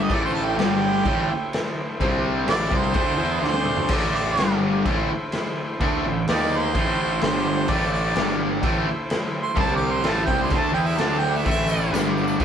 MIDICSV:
0, 0, Header, 1, 6, 480
1, 0, Start_track
1, 0, Key_signature, 0, "minor"
1, 0, Tempo, 473186
1, 113, Time_signature, 4, 2, 24, 8
1, 12627, End_track
2, 0, Start_track
2, 0, Title_t, "Harmonica"
2, 0, Program_c, 0, 22
2, 39, Note_on_c, 0, 75, 84
2, 140, Note_on_c, 0, 74, 91
2, 155, Note_off_c, 0, 75, 0
2, 240, Note_off_c, 0, 74, 0
2, 253, Note_on_c, 0, 72, 83
2, 339, Note_off_c, 0, 72, 0
2, 345, Note_on_c, 0, 69, 84
2, 454, Note_on_c, 0, 67, 88
2, 469, Note_off_c, 0, 69, 0
2, 576, Note_off_c, 0, 67, 0
2, 594, Note_on_c, 0, 67, 101
2, 1533, Note_off_c, 0, 67, 0
2, 2533, Note_on_c, 0, 74, 107
2, 2822, Note_on_c, 0, 72, 97
2, 2837, Note_off_c, 0, 74, 0
2, 3497, Note_off_c, 0, 72, 0
2, 3530, Note_on_c, 0, 72, 98
2, 3997, Note_on_c, 0, 74, 98
2, 4012, Note_off_c, 0, 72, 0
2, 4207, Note_off_c, 0, 74, 0
2, 4213, Note_on_c, 0, 74, 99
2, 4680, Note_off_c, 0, 74, 0
2, 6395, Note_on_c, 0, 74, 94
2, 6664, Note_on_c, 0, 72, 100
2, 6679, Note_off_c, 0, 74, 0
2, 7333, Note_off_c, 0, 72, 0
2, 7339, Note_on_c, 0, 72, 94
2, 7822, Note_on_c, 0, 74, 106
2, 7838, Note_off_c, 0, 72, 0
2, 8037, Note_off_c, 0, 74, 0
2, 8043, Note_on_c, 0, 74, 95
2, 8513, Note_off_c, 0, 74, 0
2, 9567, Note_on_c, 0, 84, 101
2, 9723, Note_off_c, 0, 84, 0
2, 9742, Note_on_c, 0, 81, 97
2, 9890, Note_off_c, 0, 81, 0
2, 9904, Note_on_c, 0, 86, 95
2, 10056, Note_on_c, 0, 84, 93
2, 10071, Note_off_c, 0, 86, 0
2, 10242, Note_on_c, 0, 81, 91
2, 10257, Note_off_c, 0, 84, 0
2, 10379, Note_off_c, 0, 81, 0
2, 10407, Note_on_c, 0, 79, 94
2, 10542, Note_off_c, 0, 79, 0
2, 10581, Note_on_c, 0, 84, 87
2, 10740, Note_on_c, 0, 81, 98
2, 10756, Note_off_c, 0, 84, 0
2, 10868, Note_off_c, 0, 81, 0
2, 10895, Note_on_c, 0, 79, 93
2, 11023, Note_on_c, 0, 76, 83
2, 11038, Note_off_c, 0, 79, 0
2, 11173, Note_on_c, 0, 81, 94
2, 11188, Note_off_c, 0, 76, 0
2, 11357, Note_on_c, 0, 79, 97
2, 11373, Note_off_c, 0, 81, 0
2, 11522, Note_on_c, 0, 76, 86
2, 11537, Note_off_c, 0, 79, 0
2, 11657, Note_off_c, 0, 76, 0
2, 11675, Note_on_c, 0, 76, 111
2, 12122, Note_off_c, 0, 76, 0
2, 12627, End_track
3, 0, Start_track
3, 0, Title_t, "Transistor combo organ"
3, 0, Program_c, 1, 18
3, 0, Note_on_c, 1, 62, 66
3, 0, Note_on_c, 1, 67, 64
3, 0, Note_on_c, 1, 74, 82
3, 100, Note_on_c, 1, 64, 67
3, 112, Note_off_c, 1, 62, 0
3, 113, Note_on_c, 1, 72, 76
3, 117, Note_off_c, 1, 67, 0
3, 117, Note_off_c, 1, 74, 0
3, 119, Note_on_c, 1, 69, 64
3, 590, Note_off_c, 1, 64, 0
3, 596, Note_off_c, 1, 72, 0
3, 598, Note_on_c, 1, 74, 78
3, 599, Note_off_c, 1, 69, 0
3, 604, Note_on_c, 1, 67, 62
3, 605, Note_on_c, 1, 62, 68
3, 1081, Note_off_c, 1, 74, 0
3, 1083, Note_off_c, 1, 67, 0
3, 1084, Note_off_c, 1, 62, 0
3, 1091, Note_on_c, 1, 64, 75
3, 1093, Note_on_c, 1, 69, 59
3, 1102, Note_on_c, 1, 72, 73
3, 2028, Note_on_c, 1, 60, 69
3, 2031, Note_off_c, 1, 72, 0
3, 2032, Note_off_c, 1, 64, 0
3, 2033, Note_off_c, 1, 69, 0
3, 2033, Note_on_c, 1, 67, 67
3, 2043, Note_on_c, 1, 72, 79
3, 2510, Note_on_c, 1, 64, 68
3, 2516, Note_on_c, 1, 69, 62
3, 2519, Note_off_c, 1, 60, 0
3, 2521, Note_off_c, 1, 72, 0
3, 2522, Note_off_c, 1, 67, 0
3, 2533, Note_on_c, 1, 72, 78
3, 3463, Note_off_c, 1, 64, 0
3, 3466, Note_off_c, 1, 69, 0
3, 3475, Note_off_c, 1, 72, 0
3, 3476, Note_on_c, 1, 62, 75
3, 3483, Note_on_c, 1, 69, 63
3, 3489, Note_on_c, 1, 74, 74
3, 3965, Note_off_c, 1, 62, 0
3, 3966, Note_off_c, 1, 69, 0
3, 3966, Note_on_c, 1, 64, 60
3, 3972, Note_off_c, 1, 74, 0
3, 3972, Note_on_c, 1, 72, 73
3, 3978, Note_on_c, 1, 69, 53
3, 4438, Note_on_c, 1, 67, 59
3, 4443, Note_on_c, 1, 62, 69
3, 4451, Note_off_c, 1, 64, 0
3, 4454, Note_off_c, 1, 72, 0
3, 4456, Note_on_c, 1, 74, 72
3, 4457, Note_off_c, 1, 69, 0
3, 4918, Note_on_c, 1, 64, 84
3, 4927, Note_off_c, 1, 67, 0
3, 4929, Note_off_c, 1, 62, 0
3, 4930, Note_on_c, 1, 72, 90
3, 4936, Note_off_c, 1, 74, 0
3, 4941, Note_on_c, 1, 69, 81
3, 6338, Note_off_c, 1, 64, 0
3, 6345, Note_off_c, 1, 72, 0
3, 6350, Note_off_c, 1, 69, 0
3, 6374, Note_on_c, 1, 63, 68
3, 6380, Note_on_c, 1, 70, 58
3, 6384, Note_on_c, 1, 75, 66
3, 6855, Note_off_c, 1, 63, 0
3, 6858, Note_off_c, 1, 70, 0
3, 6860, Note_off_c, 1, 75, 0
3, 6871, Note_on_c, 1, 72, 74
3, 6875, Note_on_c, 1, 64, 64
3, 6880, Note_on_c, 1, 69, 63
3, 7339, Note_on_c, 1, 67, 70
3, 7343, Note_off_c, 1, 72, 0
3, 7345, Note_off_c, 1, 64, 0
3, 7347, Note_off_c, 1, 69, 0
3, 7351, Note_on_c, 1, 74, 77
3, 7356, Note_on_c, 1, 62, 73
3, 7813, Note_on_c, 1, 69, 59
3, 7815, Note_on_c, 1, 72, 75
3, 7817, Note_off_c, 1, 67, 0
3, 7822, Note_on_c, 1, 64, 59
3, 7823, Note_off_c, 1, 74, 0
3, 7825, Note_off_c, 1, 62, 0
3, 8293, Note_off_c, 1, 69, 0
3, 8294, Note_off_c, 1, 72, 0
3, 8297, Note_off_c, 1, 64, 0
3, 8302, Note_on_c, 1, 62, 67
3, 8302, Note_on_c, 1, 67, 66
3, 8311, Note_on_c, 1, 74, 70
3, 8776, Note_off_c, 1, 67, 0
3, 8777, Note_off_c, 1, 62, 0
3, 8781, Note_off_c, 1, 74, 0
3, 8794, Note_on_c, 1, 64, 80
3, 8801, Note_on_c, 1, 69, 73
3, 8805, Note_on_c, 1, 72, 93
3, 9721, Note_off_c, 1, 64, 0
3, 9724, Note_off_c, 1, 69, 0
3, 9726, Note_off_c, 1, 72, 0
3, 9729, Note_on_c, 1, 67, 61
3, 9733, Note_on_c, 1, 60, 61
3, 9746, Note_on_c, 1, 72, 70
3, 10174, Note_on_c, 1, 64, 59
3, 10186, Note_off_c, 1, 72, 0
3, 10197, Note_on_c, 1, 69, 60
3, 10198, Note_on_c, 1, 72, 71
3, 10207, Note_off_c, 1, 67, 0
3, 10209, Note_off_c, 1, 60, 0
3, 11127, Note_off_c, 1, 64, 0
3, 11128, Note_off_c, 1, 69, 0
3, 11139, Note_off_c, 1, 72, 0
3, 11140, Note_on_c, 1, 69, 64
3, 11151, Note_on_c, 1, 62, 69
3, 11152, Note_on_c, 1, 74, 78
3, 11610, Note_off_c, 1, 69, 0
3, 11622, Note_on_c, 1, 69, 60
3, 11628, Note_on_c, 1, 72, 70
3, 11631, Note_on_c, 1, 64, 57
3, 11635, Note_off_c, 1, 62, 0
3, 11635, Note_off_c, 1, 74, 0
3, 12106, Note_on_c, 1, 67, 59
3, 12109, Note_off_c, 1, 69, 0
3, 12110, Note_on_c, 1, 62, 59
3, 12111, Note_on_c, 1, 74, 81
3, 12112, Note_off_c, 1, 72, 0
3, 12113, Note_off_c, 1, 64, 0
3, 12551, Note_on_c, 1, 64, 90
3, 12568, Note_on_c, 1, 69, 72
3, 12577, Note_on_c, 1, 72, 88
3, 12590, Note_off_c, 1, 67, 0
3, 12592, Note_off_c, 1, 62, 0
3, 12593, Note_off_c, 1, 74, 0
3, 12627, Note_off_c, 1, 64, 0
3, 12627, Note_off_c, 1, 69, 0
3, 12627, Note_off_c, 1, 72, 0
3, 12627, End_track
4, 0, Start_track
4, 0, Title_t, "Distorted electric guitar"
4, 0, Program_c, 2, 30
4, 81, Note_on_c, 2, 45, 100
4, 87, Note_on_c, 2, 52, 101
4, 89, Note_on_c, 2, 57, 97
4, 573, Note_off_c, 2, 45, 0
4, 574, Note_on_c, 2, 43, 100
4, 576, Note_off_c, 2, 52, 0
4, 577, Note_off_c, 2, 57, 0
4, 582, Note_on_c, 2, 50, 101
4, 594, Note_on_c, 2, 55, 116
4, 1059, Note_off_c, 2, 50, 0
4, 1061, Note_off_c, 2, 43, 0
4, 1063, Note_on_c, 2, 45, 104
4, 1068, Note_off_c, 2, 55, 0
4, 1072, Note_on_c, 2, 52, 91
4, 1073, Note_on_c, 2, 57, 102
4, 1305, Note_off_c, 2, 45, 0
4, 1310, Note_off_c, 2, 52, 0
4, 1310, Note_off_c, 2, 57, 0
4, 2029, Note_on_c, 2, 48, 95
4, 2033, Note_on_c, 2, 55, 107
4, 2037, Note_on_c, 2, 60, 118
4, 2500, Note_off_c, 2, 48, 0
4, 2504, Note_on_c, 2, 45, 91
4, 2512, Note_off_c, 2, 55, 0
4, 2516, Note_off_c, 2, 60, 0
4, 2516, Note_on_c, 2, 52, 105
4, 2523, Note_on_c, 2, 57, 114
4, 2741, Note_off_c, 2, 45, 0
4, 2744, Note_off_c, 2, 52, 0
4, 2745, Note_on_c, 2, 48, 99
4, 2746, Note_off_c, 2, 57, 0
4, 2748, Note_on_c, 2, 55, 107
4, 2750, Note_on_c, 2, 60, 89
4, 2976, Note_off_c, 2, 48, 0
4, 2980, Note_on_c, 2, 50, 92
4, 2987, Note_off_c, 2, 55, 0
4, 2991, Note_on_c, 2, 57, 104
4, 2993, Note_off_c, 2, 60, 0
4, 3003, Note_on_c, 2, 62, 99
4, 3222, Note_off_c, 2, 50, 0
4, 3226, Note_on_c, 2, 52, 90
4, 3227, Note_off_c, 2, 57, 0
4, 3231, Note_on_c, 2, 59, 102
4, 3237, Note_off_c, 2, 62, 0
4, 3241, Note_on_c, 2, 64, 109
4, 3465, Note_off_c, 2, 52, 0
4, 3465, Note_on_c, 2, 50, 92
4, 3470, Note_off_c, 2, 59, 0
4, 3470, Note_on_c, 2, 57, 93
4, 3478, Note_off_c, 2, 64, 0
4, 3478, Note_on_c, 2, 62, 104
4, 3951, Note_off_c, 2, 50, 0
4, 3951, Note_off_c, 2, 57, 0
4, 3955, Note_on_c, 2, 45, 102
4, 3958, Note_on_c, 2, 52, 109
4, 3959, Note_off_c, 2, 62, 0
4, 3963, Note_on_c, 2, 57, 105
4, 4437, Note_on_c, 2, 43, 89
4, 4442, Note_off_c, 2, 57, 0
4, 4451, Note_off_c, 2, 45, 0
4, 4451, Note_off_c, 2, 52, 0
4, 4451, Note_on_c, 2, 50, 110
4, 4451, Note_on_c, 2, 55, 104
4, 4919, Note_off_c, 2, 43, 0
4, 4921, Note_off_c, 2, 50, 0
4, 4925, Note_on_c, 2, 45, 105
4, 4926, Note_off_c, 2, 55, 0
4, 4930, Note_on_c, 2, 52, 95
4, 4941, Note_on_c, 2, 57, 102
4, 5163, Note_off_c, 2, 45, 0
4, 5166, Note_off_c, 2, 52, 0
4, 5172, Note_off_c, 2, 57, 0
4, 5890, Note_on_c, 2, 50, 95
4, 5893, Note_on_c, 2, 57, 95
4, 5905, Note_on_c, 2, 62, 121
4, 6126, Note_off_c, 2, 50, 0
4, 6128, Note_off_c, 2, 57, 0
4, 6133, Note_off_c, 2, 62, 0
4, 6134, Note_on_c, 2, 45, 73
4, 6144, Note_on_c, 2, 52, 78
4, 6327, Note_off_c, 2, 45, 0
4, 6332, Note_off_c, 2, 52, 0
4, 6380, Note_on_c, 2, 51, 99
4, 6387, Note_on_c, 2, 63, 106
4, 6389, Note_on_c, 2, 58, 98
4, 6843, Note_off_c, 2, 51, 0
4, 6847, Note_on_c, 2, 45, 106
4, 6852, Note_off_c, 2, 58, 0
4, 6854, Note_off_c, 2, 63, 0
4, 6856, Note_on_c, 2, 52, 104
4, 6862, Note_on_c, 2, 57, 98
4, 7317, Note_on_c, 2, 43, 95
4, 7320, Note_off_c, 2, 45, 0
4, 7322, Note_off_c, 2, 52, 0
4, 7324, Note_on_c, 2, 50, 103
4, 7327, Note_on_c, 2, 55, 113
4, 7331, Note_off_c, 2, 57, 0
4, 7790, Note_off_c, 2, 50, 0
4, 7794, Note_on_c, 2, 45, 99
4, 7798, Note_off_c, 2, 55, 0
4, 7799, Note_off_c, 2, 43, 0
4, 7802, Note_on_c, 2, 52, 95
4, 7809, Note_on_c, 2, 57, 121
4, 8261, Note_on_c, 2, 43, 100
4, 8266, Note_off_c, 2, 45, 0
4, 8270, Note_on_c, 2, 50, 114
4, 8273, Note_off_c, 2, 52, 0
4, 8277, Note_on_c, 2, 55, 113
4, 8284, Note_off_c, 2, 57, 0
4, 8736, Note_off_c, 2, 50, 0
4, 8740, Note_on_c, 2, 45, 87
4, 8749, Note_off_c, 2, 43, 0
4, 8751, Note_off_c, 2, 55, 0
4, 8755, Note_on_c, 2, 52, 94
4, 8762, Note_on_c, 2, 57, 98
4, 8988, Note_off_c, 2, 45, 0
4, 8996, Note_off_c, 2, 52, 0
4, 8999, Note_off_c, 2, 57, 0
4, 9686, Note_on_c, 2, 48, 104
4, 9693, Note_on_c, 2, 55, 109
4, 9693, Note_on_c, 2, 60, 110
4, 10177, Note_off_c, 2, 48, 0
4, 10181, Note_on_c, 2, 45, 89
4, 10182, Note_off_c, 2, 55, 0
4, 10182, Note_off_c, 2, 60, 0
4, 10187, Note_on_c, 2, 52, 101
4, 10187, Note_on_c, 2, 57, 117
4, 10419, Note_off_c, 2, 45, 0
4, 10423, Note_on_c, 2, 48, 100
4, 10426, Note_off_c, 2, 52, 0
4, 10426, Note_off_c, 2, 57, 0
4, 10430, Note_on_c, 2, 55, 96
4, 10430, Note_on_c, 2, 60, 103
4, 10660, Note_off_c, 2, 48, 0
4, 10664, Note_on_c, 2, 50, 97
4, 10666, Note_off_c, 2, 55, 0
4, 10670, Note_off_c, 2, 60, 0
4, 10670, Note_on_c, 2, 57, 94
4, 10682, Note_on_c, 2, 62, 108
4, 10874, Note_off_c, 2, 50, 0
4, 10878, Note_on_c, 2, 52, 86
4, 10886, Note_off_c, 2, 57, 0
4, 10890, Note_off_c, 2, 62, 0
4, 10890, Note_on_c, 2, 59, 97
4, 10894, Note_on_c, 2, 64, 107
4, 11132, Note_off_c, 2, 52, 0
4, 11132, Note_on_c, 2, 50, 93
4, 11138, Note_off_c, 2, 59, 0
4, 11138, Note_on_c, 2, 57, 82
4, 11139, Note_off_c, 2, 64, 0
4, 11139, Note_on_c, 2, 62, 105
4, 11605, Note_off_c, 2, 57, 0
4, 11607, Note_off_c, 2, 50, 0
4, 11611, Note_on_c, 2, 45, 105
4, 11613, Note_off_c, 2, 62, 0
4, 11617, Note_on_c, 2, 57, 116
4, 11618, Note_on_c, 2, 52, 102
4, 12086, Note_on_c, 2, 43, 96
4, 12089, Note_off_c, 2, 45, 0
4, 12092, Note_off_c, 2, 52, 0
4, 12093, Note_on_c, 2, 50, 108
4, 12096, Note_on_c, 2, 55, 111
4, 12099, Note_off_c, 2, 57, 0
4, 12561, Note_off_c, 2, 50, 0
4, 12565, Note_on_c, 2, 45, 100
4, 12567, Note_off_c, 2, 55, 0
4, 12571, Note_on_c, 2, 52, 101
4, 12573, Note_off_c, 2, 43, 0
4, 12578, Note_on_c, 2, 57, 115
4, 12627, Note_off_c, 2, 45, 0
4, 12627, Note_off_c, 2, 52, 0
4, 12627, Note_off_c, 2, 57, 0
4, 12627, End_track
5, 0, Start_track
5, 0, Title_t, "Picked electric bass"
5, 0, Program_c, 3, 34
5, 92, Note_on_c, 3, 33, 102
5, 551, Note_off_c, 3, 33, 0
5, 568, Note_on_c, 3, 31, 96
5, 1030, Note_off_c, 3, 31, 0
5, 1063, Note_on_c, 3, 33, 101
5, 1295, Note_off_c, 3, 33, 0
5, 2027, Note_on_c, 3, 36, 96
5, 2484, Note_off_c, 3, 36, 0
5, 2509, Note_on_c, 3, 33, 99
5, 2742, Note_off_c, 3, 33, 0
5, 2755, Note_on_c, 3, 36, 84
5, 2985, Note_off_c, 3, 36, 0
5, 2993, Note_on_c, 3, 38, 98
5, 3206, Note_off_c, 3, 38, 0
5, 3212, Note_on_c, 3, 40, 85
5, 3454, Note_off_c, 3, 40, 0
5, 3477, Note_on_c, 3, 38, 109
5, 3932, Note_off_c, 3, 38, 0
5, 3957, Note_on_c, 3, 33, 99
5, 4412, Note_off_c, 3, 33, 0
5, 4450, Note_on_c, 3, 31, 95
5, 4899, Note_off_c, 3, 31, 0
5, 4930, Note_on_c, 3, 33, 95
5, 5156, Note_off_c, 3, 33, 0
5, 5883, Note_on_c, 3, 38, 101
5, 6112, Note_off_c, 3, 38, 0
5, 6133, Note_on_c, 3, 33, 83
5, 6358, Note_off_c, 3, 33, 0
5, 6366, Note_on_c, 3, 39, 103
5, 6817, Note_off_c, 3, 39, 0
5, 6838, Note_on_c, 3, 33, 97
5, 7292, Note_off_c, 3, 33, 0
5, 7329, Note_on_c, 3, 31, 106
5, 7778, Note_off_c, 3, 31, 0
5, 7800, Note_on_c, 3, 33, 102
5, 8252, Note_off_c, 3, 33, 0
5, 8272, Note_on_c, 3, 31, 91
5, 8727, Note_off_c, 3, 31, 0
5, 8746, Note_on_c, 3, 33, 98
5, 8980, Note_off_c, 3, 33, 0
5, 9701, Note_on_c, 3, 36, 105
5, 10158, Note_off_c, 3, 36, 0
5, 10167, Note_on_c, 3, 33, 88
5, 10408, Note_off_c, 3, 33, 0
5, 10423, Note_on_c, 3, 36, 92
5, 10656, Note_off_c, 3, 36, 0
5, 10664, Note_on_c, 3, 38, 106
5, 10875, Note_off_c, 3, 38, 0
5, 10881, Note_on_c, 3, 40, 92
5, 11123, Note_off_c, 3, 40, 0
5, 11133, Note_on_c, 3, 38, 95
5, 11591, Note_off_c, 3, 38, 0
5, 11616, Note_on_c, 3, 33, 103
5, 12072, Note_off_c, 3, 33, 0
5, 12087, Note_on_c, 3, 31, 96
5, 12546, Note_off_c, 3, 31, 0
5, 12583, Note_on_c, 3, 33, 100
5, 12627, Note_off_c, 3, 33, 0
5, 12627, End_track
6, 0, Start_track
6, 0, Title_t, "Drums"
6, 100, Note_on_c, 9, 36, 102
6, 109, Note_on_c, 9, 49, 58
6, 202, Note_off_c, 9, 36, 0
6, 210, Note_off_c, 9, 49, 0
6, 596, Note_on_c, 9, 49, 63
6, 609, Note_on_c, 9, 38, 120
6, 698, Note_off_c, 9, 49, 0
6, 710, Note_off_c, 9, 38, 0
6, 1070, Note_on_c, 9, 36, 107
6, 1074, Note_on_c, 9, 49, 60
6, 1172, Note_off_c, 9, 36, 0
6, 1175, Note_off_c, 9, 49, 0
6, 1554, Note_on_c, 9, 49, 60
6, 1566, Note_on_c, 9, 38, 109
6, 1655, Note_off_c, 9, 49, 0
6, 1667, Note_off_c, 9, 38, 0
6, 2036, Note_on_c, 9, 36, 104
6, 2042, Note_on_c, 9, 49, 59
6, 2137, Note_off_c, 9, 36, 0
6, 2143, Note_off_c, 9, 49, 0
6, 2513, Note_on_c, 9, 49, 60
6, 2525, Note_on_c, 9, 38, 111
6, 2614, Note_off_c, 9, 49, 0
6, 2626, Note_off_c, 9, 38, 0
6, 2754, Note_on_c, 9, 36, 100
6, 2856, Note_off_c, 9, 36, 0
6, 2983, Note_on_c, 9, 49, 65
6, 2992, Note_on_c, 9, 36, 112
6, 3085, Note_off_c, 9, 49, 0
6, 3093, Note_off_c, 9, 36, 0
6, 3489, Note_on_c, 9, 38, 63
6, 3588, Note_on_c, 9, 48, 71
6, 3591, Note_off_c, 9, 38, 0
6, 3689, Note_off_c, 9, 48, 0
6, 3703, Note_on_c, 9, 45, 96
6, 3805, Note_off_c, 9, 45, 0
6, 3821, Note_on_c, 9, 43, 93
6, 3922, Note_off_c, 9, 43, 0
6, 3942, Note_on_c, 9, 49, 58
6, 3942, Note_on_c, 9, 57, 100
6, 3952, Note_on_c, 9, 36, 116
6, 4044, Note_off_c, 9, 49, 0
6, 4044, Note_off_c, 9, 57, 0
6, 4053, Note_off_c, 9, 36, 0
6, 4437, Note_on_c, 9, 49, 63
6, 4450, Note_on_c, 9, 38, 116
6, 4539, Note_off_c, 9, 49, 0
6, 4551, Note_off_c, 9, 38, 0
6, 4925, Note_on_c, 9, 36, 106
6, 4926, Note_on_c, 9, 49, 60
6, 5027, Note_off_c, 9, 36, 0
6, 5027, Note_off_c, 9, 49, 0
6, 5399, Note_on_c, 9, 49, 62
6, 5411, Note_on_c, 9, 38, 99
6, 5500, Note_off_c, 9, 49, 0
6, 5512, Note_off_c, 9, 38, 0
6, 5890, Note_on_c, 9, 36, 106
6, 5891, Note_on_c, 9, 49, 59
6, 5992, Note_off_c, 9, 36, 0
6, 5992, Note_off_c, 9, 49, 0
6, 6366, Note_on_c, 9, 49, 58
6, 6378, Note_on_c, 9, 38, 108
6, 6468, Note_off_c, 9, 49, 0
6, 6480, Note_off_c, 9, 38, 0
6, 6847, Note_on_c, 9, 36, 102
6, 6848, Note_on_c, 9, 49, 64
6, 6948, Note_off_c, 9, 36, 0
6, 6949, Note_off_c, 9, 49, 0
6, 7318, Note_on_c, 9, 49, 64
6, 7330, Note_on_c, 9, 38, 112
6, 7420, Note_off_c, 9, 49, 0
6, 7432, Note_off_c, 9, 38, 0
6, 7791, Note_on_c, 9, 49, 64
6, 7800, Note_on_c, 9, 36, 97
6, 7893, Note_off_c, 9, 49, 0
6, 7901, Note_off_c, 9, 36, 0
6, 8273, Note_on_c, 9, 49, 55
6, 8286, Note_on_c, 9, 38, 120
6, 8375, Note_off_c, 9, 49, 0
6, 8387, Note_off_c, 9, 38, 0
6, 8755, Note_on_c, 9, 36, 108
6, 8758, Note_on_c, 9, 49, 60
6, 8856, Note_off_c, 9, 36, 0
6, 8859, Note_off_c, 9, 49, 0
6, 9232, Note_on_c, 9, 49, 59
6, 9244, Note_on_c, 9, 38, 117
6, 9333, Note_off_c, 9, 49, 0
6, 9345, Note_off_c, 9, 38, 0
6, 9705, Note_on_c, 9, 49, 59
6, 9706, Note_on_c, 9, 36, 113
6, 9807, Note_off_c, 9, 36, 0
6, 9807, Note_off_c, 9, 49, 0
6, 10181, Note_on_c, 9, 49, 58
6, 10193, Note_on_c, 9, 38, 109
6, 10283, Note_off_c, 9, 49, 0
6, 10295, Note_off_c, 9, 38, 0
6, 10424, Note_on_c, 9, 36, 100
6, 10525, Note_off_c, 9, 36, 0
6, 10654, Note_on_c, 9, 49, 57
6, 10664, Note_on_c, 9, 36, 115
6, 10756, Note_off_c, 9, 49, 0
6, 10766, Note_off_c, 9, 36, 0
6, 11143, Note_on_c, 9, 49, 63
6, 11155, Note_on_c, 9, 38, 110
6, 11244, Note_off_c, 9, 49, 0
6, 11257, Note_off_c, 9, 38, 0
6, 11625, Note_on_c, 9, 36, 101
6, 11625, Note_on_c, 9, 49, 64
6, 11636, Note_on_c, 9, 54, 29
6, 11727, Note_off_c, 9, 36, 0
6, 11727, Note_off_c, 9, 49, 0
6, 11738, Note_off_c, 9, 54, 0
6, 11753, Note_on_c, 9, 54, 25
6, 11854, Note_off_c, 9, 54, 0
6, 11856, Note_on_c, 9, 54, 68
6, 11957, Note_off_c, 9, 54, 0
6, 11991, Note_on_c, 9, 54, 27
6, 12092, Note_off_c, 9, 54, 0
6, 12109, Note_on_c, 9, 49, 64
6, 12121, Note_on_c, 9, 38, 105
6, 12123, Note_on_c, 9, 54, 95
6, 12210, Note_off_c, 9, 49, 0
6, 12223, Note_off_c, 9, 38, 0
6, 12224, Note_off_c, 9, 54, 0
6, 12352, Note_on_c, 9, 54, 27
6, 12453, Note_off_c, 9, 54, 0
6, 12453, Note_on_c, 9, 54, 62
6, 12554, Note_off_c, 9, 54, 0
6, 12578, Note_on_c, 9, 49, 65
6, 12579, Note_on_c, 9, 36, 114
6, 12585, Note_on_c, 9, 54, 28
6, 12627, Note_off_c, 9, 36, 0
6, 12627, Note_off_c, 9, 49, 0
6, 12627, Note_off_c, 9, 54, 0
6, 12627, End_track
0, 0, End_of_file